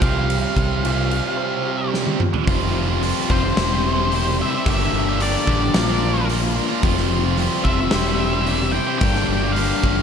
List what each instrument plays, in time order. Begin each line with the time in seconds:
Already playing: clean electric guitar F3 C4 F4
0.01 fingered electric bass C2, clean electric guitar C3, distorted electric guitar C3 G3 C4, lead electric guitar F5, kick, crash
0.29 clean electric guitar C3, crash
0.56 fingered electric bass C2, clean electric guitar C4, kick, crash
0.83 distorted electric guitar C3 G3 C4, clean electric guitar F4, crash
1.11 clean electric guitar G4, crash
1.37 clean electric guitar C5
1.66 clean electric guitar G4
1.93 clean electric guitar C4, snare
2.07 high tom
2.20 clean electric guitar F4, mid tom
2.34 floor tom
2.47 fingered electric bass F1, distorted electric guitar F2 C3 F3 G3 C4 F4, kick, open hi-hat
2.75 distorted electric guitar F3 G3 C4 F4
2.89 distorted electric guitar F3 G3 C4 F4
3.01 distorted electric guitar F2 C3 F3 G3 C4 F4, open hi-hat
3.29 fingered electric bass F1, distorted electric guitar F3 G3 C4 F4, lead electric guitar C5, kick
3.43 distorted electric guitar F3 G3 C4 F4, muted distorted electric guitar stroke
3.56 fingered electric bass E1, distorted electric guitar C3 G3 C4 E4 G4 C5, snare, open hi-hat
3.70 distorted electric guitar C4 E4 G4 C5
3.98 distorted electric guitar C4 E4 G4 C5
4.12 distorted electric guitar C3 G3 C4 E4 G4 C5, open hi-hat
4.27 muted distorted electric guitar stroke
4.39 distorted electric guitar C4 E4 G4 C5, lead electric guitar E5
4.53 distorted electric guitar C4 E4 G4 C5
4.66 fingered electric bass G1, distorted electric guitar G2 D3 G3 A#3 D4 G4, lead electric guitar E5, kick, open hi-hat
4.93 fingered electric bass G1, distorted electric guitar G3 A#3 D4 G4
5.06 distorted electric guitar G3 A#3 D4 G4
5.19 distorted electric guitar G2 D3 G3 A#3 D4 G4, lead electric guitar D5, open hi-hat
5.46 fingered electric bass A1, distorted electric guitar G3 A#3 D4 G4, kick
5.61 distorted electric guitar G3 A#3 D4 G4, muted distorted electric guitar stroke
5.74 fingered electric bass A#1, distorted electric guitar A#2 F3 A#3 D4 F4 A#4, snare, open hi-hat
5.88 distorted electric guitar A#3 D4 F4 A#4
6.15 distorted electric guitar A#3 D4 F4 A#4
6.28 distorted electric guitar A#2 F3 A#3 D4 F4 A#4, open hi-hat
6.42 muted distorted electric guitar stroke
6.55 distorted electric guitar A#3 D4 F4 A#4
6.69 distorted electric guitar A#3 D4 F4 A#4
6.83 fingered electric bass F1, distorted electric guitar F2 C3 F3 G3 C4 F4, kick, open hi-hat
6.97 snare
7.11 distorted electric guitar F3 G3 C4 F4
7.24 distorted electric guitar F3 G3 C4 F4
7.37 distorted electric guitar F2 C3 F3 G3 C4 F4, open hi-hat
7.64 fingered electric bass F1, distorted electric guitar F3 G3 C4 F4, lead electric guitar E5, kick
7.77 distorted electric guitar F3 G3 C4 F4, muted distorted electric guitar stroke
7.91 fingered electric bass E1, distorted electric guitar C3 G3 C4 E4 G4 C5, snare, open hi-hat
8.05 distorted electric guitar C4 E4 G4 C5
8.32 distorted electric guitar C4 E4 G4 C5
8.45 distorted electric guitar C3 G3 C4 E4 G4 C5, open hi-hat
8.61 muted distorted electric guitar stroke
8.72 distorted electric guitar C4 E4 G4 C5, lead electric guitar G5
8.87 distorted electric guitar C4 E4 G4 C5
8.99 fingered electric bass G1, distorted electric guitar G2 D3 G3 A#3 D4 G4, lead electric guitar G5, kick, open hi-hat
9.15 snare
9.28 fingered electric bass G1, distorted electric guitar G3 A#3 D4 G4
9.41 distorted electric guitar G3 A#3 D4 G4
9.53 distorted electric guitar G2 D3 G3 A#3 D4, lead electric guitar F5, open hi-hat
9.57 distorted electric guitar G4
9.83 fingered electric bass G1, distorted electric guitar G3 A#3 D4 G4, kick
9.96 distorted electric guitar G3 A#3 D4 G4, muted distorted electric guitar stroke